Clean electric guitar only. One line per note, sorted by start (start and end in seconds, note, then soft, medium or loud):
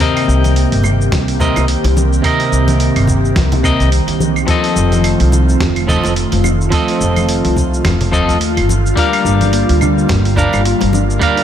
0.00 1.37 C3 medium
0.00 1.37 C4 medium
0.00 1.38 A#4 medium
0.00 1.38 D#5 medium
1.40 1.64 C3 medium
1.40 1.64 C4 medium
1.40 1.65 A#4 medium
1.40 1.65 D#5 medium
2.22 3.60 C3 medium
2.22 3.61 C4 medium
2.22 3.62 A#4 medium
2.22 3.62 D#5 medium
3.63 3.88 C3 medium
3.63 3.88 C4 medium
3.63 3.89 A#4 medium
3.63 3.89 D#5 medium
4.47 5.85 F3 medium
4.47 5.85 C4 medium
4.47 5.86 A4 medium
4.47 5.87 D#5 medium
5.87 6.12 F3 medium
5.87 6.12 C4 medium
5.87 6.13 A4 medium
5.87 6.13 D#5 medium
6.70 8.09 F3 medium
6.70 8.09 C4 medium
6.70 8.10 A4 medium
6.70 8.11 D#5 medium
8.12 8.36 F3 medium
8.12 8.37 C4 medium
8.12 8.37 A4 medium
8.12 8.37 D#5 medium
8.96 10.34 G3 medium
8.96 10.34 D4 medium
8.96 10.35 A#4 medium
8.96 10.35 F5 medium
10.36 10.61 G3 medium
10.36 10.61 D4 medium
10.36 10.62 A#4 medium
10.36 10.62 F5 medium
11.19 11.44 G3 medium
11.19 11.44 D4 medium
11.19 11.44 A#4 medium
11.19 11.44 F5 medium